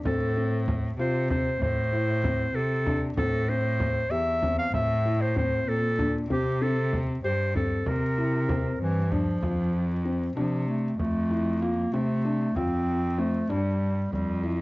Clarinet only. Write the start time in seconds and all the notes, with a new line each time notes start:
0.06 A4
1.00 C5
1.31 C5
1.63 C5
2.56 A4
3.18 A4
3.49 C5
4.11 E5
4.59 F5
4.74 E5
5.21 C5
5.38 C5
5.69 A4
6.31 G4
6.62 A4
7.24 C5
7.56 A4
7.87 A#4
8.81 E3
9.12 F3
10.37 F3
10.67 A3
10.99 A3
11.62 A#3
11.93 A3
12.56 C4
13.19 A3
13.50 G3
14.13 G3